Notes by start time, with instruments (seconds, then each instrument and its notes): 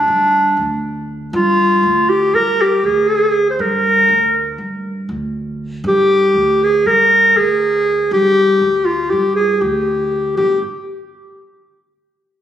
Already playing: clarinet D4
0.08 upright bass G2
0.57 upright bass D2
1.33 upright bass G2, clarinet F4
1.83 upright bass D2
2.09 clarinet G4
2.33 upright bass G2, clarinet A#4
2.61 clarinet G4
2.83 upright bass D2, clarinet G#4
3.50 clarinet C5
3.59 upright bass G2, clarinet A#4
4.09 upright bass D2
4.58 upright bass G2
5.09 upright bass D2
5.84 upright bass G2, clarinet G4
6.34 upright bass D2
6.63 clarinet G#4
6.85 upright bass G2, clarinet A#4
7.36 upright bass D2, clarinet G#4
8.11 upright bass G2, clarinet G4
8.61 upright bass D2
8.85 clarinet F4
9.10 upright bass G2, clarinet G4
9.36 clarinet G#4
9.61 upright bass D2, clarinet G4
10.37 upright bass G1, clarinet G4